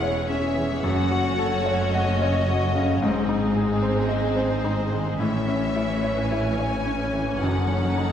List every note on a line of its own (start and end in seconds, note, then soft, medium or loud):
0.00 0.79 E1 medium
0.00 0.79 E2 medium
0.00 0.79 E2 soft
0.00 0.55 E3 soft
0.00 0.79 G#3 medium
0.00 0.29 C#4 soft
0.00 0.79 C#4 medium
0.00 0.85 E4 medium
0.00 0.79 G#4 medium
0.00 0.02 C#5 medium
0.00 0.79 C#5 soft
0.00 0.45 C#5 medium
0.00 0.28 F#5 medium
0.29 0.72 C#4 soft
0.29 0.82 E5 medium
0.55 0.83 E3 soft
0.82 2.97 F#1 medium
0.82 2.97 F#2 medium
0.82 2.96 A3 medium
0.82 2.96 C#4 medium
0.82 2.97 F#4 medium
0.82 2.97 C#5 medium
0.82 1.91 F#5 medium
1.12 1.55 F#4 soft
1.39 1.82 A4 medium
1.66 2.09 C#5 soft
1.91 3.54 D#5 medium
1.95 2.37 F#5 medium
2.22 2.64 C#5 medium
2.49 2.91 F#4 medium
2.75 3.01 C#3 soft
3.00 5.18 G#1 medium
3.00 5.18 G#2 medium
3.00 5.15 G#2 medium
3.00 5.14 G#3 medium
3.00 5.14 C4 medium
3.00 5.15 D#4 soft
3.00 5.15 G#4 medium
3.29 3.72 D#4 soft
3.56 3.99 G#4 soft
3.82 4.25 C5 soft
4.09 5.14 C5 medium
4.09 4.52 D#5 medium
4.36 4.80 C5 soft
4.65 5.08 D#4 soft
4.92 5.19 D#3 soft
5.18 7.35 A1 medium
5.18 7.35 A2 medium
5.18 7.36 A2 medium
5.18 7.35 E3 medium
5.18 7.35 C#4 soft
5.18 8.12 C#4 medium
5.18 7.35 C#5 soft
5.18 6.29 E5 medium
5.48 5.92 C#4 soft
5.76 6.19 E4 soft
6.03 6.46 C#5 soft
6.29 6.74 E4 soft
6.29 7.39 G#5 medium
6.59 7.01 C#5 soft
6.86 7.29 C#4 soft
7.14 7.40 E3 soft
7.39 8.12 F#1 medium
7.39 8.12 F#2 soft
7.39 8.12 D#3 medium
7.39 8.12 D#4 soft
7.39 8.12 A4 soft
7.39 8.12 F#5 medium
7.70 8.12 C#4 soft
7.98 8.12 D#4 soft